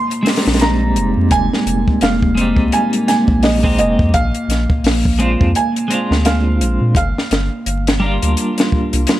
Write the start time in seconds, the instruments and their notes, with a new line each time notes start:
Already playing: analog synth pad A#3, felt piano C6
0.11 closed hi-hat
0.23 clean electric guitar G#3 C4, open hi-hat
0.27 clean electric guitar G3 D#4, snare
0.36 snare, open hi-hat
0.46 sub bass A#1, snare, open hi-hat
0.53 snare, open hi-hat
0.60 felt piano A#5, snare, closed hi-hat
0.96 sub bass F1, closed hi-hat
1.17 sub bass F2
1.31 sub bass F1, felt piano G#5, kick, closed hi-hat
1.53 snare
1.66 sub bass F1, closed hi-hat
1.88 kick
2.01 sub bass F1, felt piano F5, snare, closed hi-hat
2.22 kick
2.35 clean electric guitar G#3 C4 D#4, closed hi-hat
2.41 clean electric guitar G3
2.56 sub bass C2, kick
2.72 felt piano G#5, closed hi-hat
2.93 closed hi-hat
3.08 felt piano G#5, snare, closed hi-hat
3.28 sub bass A#1, kick
3.43 felt piano D#5, snare, open hi-hat
3.63 clean electric guitar G#3 C4 D#4 G4, kick
3.78 sub bass F1, felt piano D#5, closed hi-hat
3.99 sub bass F2, kick
4.14 sub bass A#1, felt piano F5, kick, closed hi-hat
4.34 closed hi-hat
4.48 sub bass A#1, snare, closed hi-hat
4.70 kick
4.84 sub bass A#1, snare, open hi-hat
5.05 kick
5.19 clean electric guitar G#3 C4 D4 F4, closed hi-hat
5.41 sub bass F2, kick
5.55 felt piano G#5, closed hi-hat
5.76 closed hi-hat
5.88 clean electric guitar G#3 C4, closed hi-hat
5.92 clean electric guitar D4 F4
6.11 sub bass D2, snare
6.25 felt piano F5, snare, closed hi-hat
6.61 sub bass A#1, closed hi-hat
6.81 sub bass A#2
6.95 sub bass G1, felt piano F5, kick, closed hi-hat
7.18 snare
7.31 sub bass G1, snare, closed hi-hat
7.66 sub bass G1, closed hi-hat
7.87 snare, closed hi-hat
8.00 clean electric guitar G3 A#3
8.04 clean electric guitar D4 F4
8.22 sub bass D2, closed hi-hat
8.37 closed hi-hat
8.58 snare, closed hi-hat
8.72 kick
8.93 sub bass C2, closed hi-hat
9.07 snare, closed hi-hat